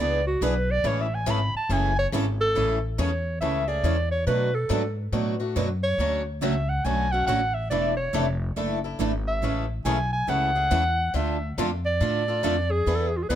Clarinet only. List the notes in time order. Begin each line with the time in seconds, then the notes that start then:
0.00 D5
0.27 F#4
0.43 B4
0.71 D5
0.87 C#5
1.01 E5
1.15 G#5
1.30 B5
1.57 A5
1.72 G#5
1.99 C#5
2.41 A4
3.00 C#5
3.41 E5
3.68 D5
4.11 C#5
4.27 B4
4.54 A4
5.83 C#5
6.42 E5
6.69 F#5
6.85 G#5
7.12 F#5
7.27 F#5
7.54 E5
7.70 D5
7.97 C#5
9.28 E5
9.85 G#5
10.13 G#5
10.29 F#5
11.15 E5
11.85 D5
12.71 G#4
12.96 A4
13.08 G#4
13.17 F4
13.23 G#4
13.29 B4